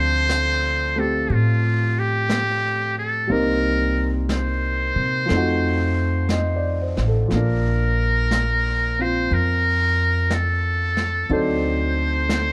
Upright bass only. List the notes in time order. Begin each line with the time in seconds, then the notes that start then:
Already playing: D2
1.30 A2
3.30 C2
4.96 C3
5.30 F2
6.97 A1
7.31 A#1
9.31 F2
11.30 D2